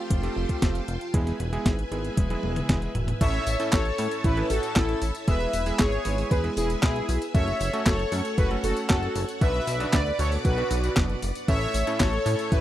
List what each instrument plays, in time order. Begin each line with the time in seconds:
Already playing: electric grand piano A3 C4 F4 G4, string machine F4 F5 G5 A5 C6
0.10 analog synth bass F1, kick, closed hi-hat
0.23 electric grand piano A3 C4 F4 G4, closed hi-hat
0.36 analog synth bass F1
0.49 kick, closed hi-hat
0.62 analog synth bass F1, electric grand piano A3 C4 F4 G4, kick, snare, closed hi-hat
0.75 closed hi-hat
0.88 analog synth bass F1, closed hi-hat
1.01 closed hi-hat
1.14 analog synth bass E1, electric grand piano G#3 B3 E4 G#4, string machine B4 E5 G#5, kick, closed hi-hat
1.27 snare, closed hi-hat
1.40 analog synth bass E1, closed hi-hat
1.53 electric grand piano G#3 B3 E4 G#4, closed hi-hat
1.66 analog synth bass G#1, kick, snare, closed hi-hat
1.79 closed hi-hat
1.91 analog synth bass G#1, electric grand piano G#3 B3 E4 G#4, closed hi-hat
2.05 closed hi-hat
2.17 analog synth bass E1, kick, closed hi-hat, high tom
2.30 electric grand piano G#3 B3 E4 G#4, closed hi-hat, high tom
2.43 analog synth bass E1, high tom
2.56 closed hi-hat, mid tom
2.69 analog synth bass E1, electric grand piano G#3 B3 E4 G#4, kick, snare, closed hi-hat, mid tom
2.82 closed hi-hat
2.95 analog synth bass E1, closed hi-hat, mid tom
3.08 closed hi-hat, mid tom
3.21 analog synth bass A1, electric grand piano A2 A3 C#4 E4 A4, string machine C#5 E5 A5 E6, analog polysynth C#5 E5, kick, closed hi-hat, crash, tambourine
3.34 closed hi-hat
3.47 analog synth bass A1, open hi-hat, tambourine
3.60 electric grand piano A2 A3 C#4 E4 A4, closed hi-hat, tambourine
3.73 analog synth bass A1, analog polysynth A4 C#5, kick, snare, clap, closed hi-hat, tambourine
3.85 closed hi-hat
3.98 analog synth bass A2, electric grand piano A2 A3 C#4 E4 A4, open hi-hat, tambourine
4.11 closed hi-hat, tambourine
4.24 analog synth bass A1, analog polysynth E4 B4, kick, closed hi-hat, tambourine
4.37 electric grand piano A2 A3 C#4 E4 A4, closed hi-hat
4.50 analog synth bass A1, analog polysynth F#4 A4, open hi-hat, tambourine
4.63 closed hi-hat, tambourine
4.76 analog synth bass A1, electric grand piano A2 A3 C#4 E4 A4, analog polysynth E4 A4, kick, snare, clap, closed hi-hat, tambourine
4.89 closed hi-hat
5.02 analog synth bass A1, open hi-hat, tambourine
5.15 closed hi-hat, tambourine
5.28 analog synth bass E1, electric grand piano G#3 B3 E4 G#4, string machine B4 G#5, analog polysynth B4 E5, kick, closed hi-hat, tambourine
5.40 closed hi-hat
5.53 analog synth bass E1, open hi-hat, tambourine
5.66 electric grand piano G#3 B3 E4 G#4, closed hi-hat, tambourine
5.79 analog synth bass G#1, analog polysynth G#4 C#5, kick, snare, clap, closed hi-hat, tambourine
5.92 closed hi-hat
6.05 analog synth bass G#1, electric grand piano G#3 B3 E4 G#4, open hi-hat, tambourine
6.18 open hi-hat, tambourine
6.31 analog synth bass E1, analog polysynth G#4 B4, kick, closed hi-hat, tambourine
6.44 electric grand piano G#3 B3 E4 G#4, closed hi-hat
6.57 analog synth bass E1, analog polysynth E4 G#4, open hi-hat, tambourine
6.70 closed hi-hat, tambourine
6.83 analog synth bass B1, electric grand piano G#3 B3 E4 G#4, analog polysynth E4 G#4, kick, snare, clap, closed hi-hat, tambourine
6.96 closed hi-hat
7.09 analog synth bass B1, open hi-hat, tambourine
7.22 closed hi-hat, tambourine
7.34 analog synth bass F#1, electric grand piano A3 C#4 F#4 A4, string machine A4 C#5 F#5 C#6, analog polysynth C#5 E5, kick, closed hi-hat, tambourine
7.48 closed hi-hat
7.60 analog synth bass F#1, open hi-hat, tambourine
7.73 electric grand piano A3 C#4 F#4 A4, closed hi-hat, tambourine
7.86 analog synth bass F#1, analog polysynth A4 C#5, kick, snare, clap, closed hi-hat, tambourine
7.99 closed hi-hat
8.12 analog synth bass F#2, electric grand piano A3 C#4 F#4 A4, open hi-hat, tambourine
8.25 closed hi-hat, tambourine
8.38 analog synth bass F#1, analog polysynth F#4 B4, kick, closed hi-hat, tambourine
8.51 electric grand piano A3 C#4 F#4 A4, closed hi-hat
8.64 analog synth bass F#1, analog polysynth F#4 A4, open hi-hat, tambourine
8.77 closed hi-hat, tambourine
8.90 analog synth bass F#1, electric grand piano A3 C#4 F#4 A4, analog polysynth F#4 A4, kick, snare, clap, closed hi-hat, tambourine
9.03 closed hi-hat
9.15 analog synth bass F#1, open hi-hat, tambourine
9.29 closed hi-hat, tambourine
9.41 analog synth bass B1, electric grand piano B2 B3 D4 F#4 B4, string machine B4 D5 D6, analog polysynth B4 E5, kick, closed hi-hat, tambourine
9.54 closed hi-hat
9.67 analog synth bass B1, open hi-hat, tambourine
9.80 electric grand piano B2 B3 D4 F#4 B4, closed hi-hat, tambourine
9.93 analog synth bass D2, analog polysynth B4 D5, kick, snare, clap, closed hi-hat, tambourine
10.06 closed hi-hat
10.19 analog synth bass D2, electric grand piano B2 B3 D4 F#4 B4, analog polysynth A4 C#5, open hi-hat, tambourine
10.32 open hi-hat, tambourine
10.45 analog synth bass B1, analog polysynth F#4 B4, kick, closed hi-hat, tambourine
10.57 electric grand piano B2 B3 D4 F#4 B4, closed hi-hat
10.71 analog synth bass B1, open hi-hat, tambourine
10.84 closed hi-hat, tambourine
10.96 analog synth bass F#1, electric grand piano B2 B3 D4 F#4 B4, kick, snare, clap, closed hi-hat, tambourine
11.10 closed hi-hat
11.22 analog synth bass F#1, open hi-hat, tambourine
11.35 closed hi-hat, tambourine
11.48 analog synth bass A1, electric grand piano A2 A3 C#4 E4 A4, string machine A4 C#5 E5 C#6, analog polysynth C#5 E5, kick, closed hi-hat, tambourine
11.61 closed hi-hat
11.74 analog synth bass A1, open hi-hat, tambourine
11.87 electric grand piano A2 A3 C#4 E4 A4, closed hi-hat, tambourine
12.00 analog synth bass A1, analog polysynth A4 C#5, kick, snare, clap, closed hi-hat, tambourine
12.13 closed hi-hat
12.26 analog synth bass A2, electric grand piano A2 A3 C#4 E4 A4, open hi-hat, tambourine
12.39 closed hi-hat, tambourine
12.51 analog synth bass A1, analog polysynth E4 B4, kick, closed hi-hat, tambourine